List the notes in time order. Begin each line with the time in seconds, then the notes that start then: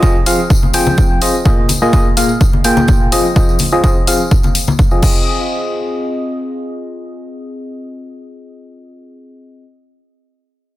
0.03 F3 C4 F4 G#4 D#5, kick, tambourine
0.26 F3 C4 F4 G#4 F5, open hi-hat, tambourine
0.40 tambourine
0.50 kick, tambourine
0.63 high conga
0.74 F3 C4 F4 G#4 G5, open hi-hat, tambourine
0.86 tambourine, high conga
0.98 kick, tambourine
1.21 C4 F4 G#4 D#5, open hi-hat, tambourine
1.34 tambourine
1.45 A#2 A#3 F4 G#4 D#5, kick, tambourine
1.69 open hi-hat, tambourine, high conga
1.82 A#2 A#3 F4 G#4 D#5, tambourine
1.93 A#3 F4 G#4 D#5, kick, tambourine
2.17 A#2 A#3 F4 G#4 F5, open hi-hat, tambourine
2.29 tambourine
2.41 kick, tambourine
2.53 high conga
2.64 A#2 A#3 F4 G#4 G5, open hi-hat, tambourine
2.77 tambourine, high conga
2.88 kick, tambourine
3.12 F3 C4 F4 G#4 D#5, open hi-hat, tambourine
3.25 tambourine
3.36 F3 C4 F4 G#4 D#5, kick, tambourine
3.49 tambourine
3.59 open hi-hat, tambourine, high conga
3.71 F3 C4 F4 G#4 D#5, tambourine
3.84 F3 C4 F4 G#4 D#5, kick, tambourine
4.07 F3 C4 F4 G#4 F5, open hi-hat, tambourine
4.20 tambourine
4.31 kick, tambourine
4.43 tambourine, high conga
4.55 open hi-hat, tambourine
4.67 tambourine, high conga
4.79 kick, tambourine
4.91 F3 C4 F4 G#4 D#5, tambourine
5.02 C4 F4 G#4 D#5, kick, crash, tambourine
5.16 tambourine